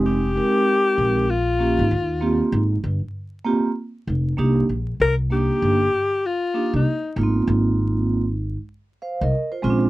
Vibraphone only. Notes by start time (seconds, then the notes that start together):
Already playing: G#3 C4 D#4 G4
0.35 G#3 C4 D#4 A#4
1.59 A#3 C#4 F4 G4
2.21 A#3 C4 F4 G4
3.45 A#3 C4 F4 G4
4.37 A#3 D4 D#4 G4
5.30 A#3 D4 D#4 G4
6.54 A#3 D4 D#4 G4
7.16 A#3 B3 D#4 F4
7.23 C4
9.02 C5 F5
9.21 A#4 D#5
9.52 F4 C5
9.62 G#3 C4 C#4 F4
9.70 D4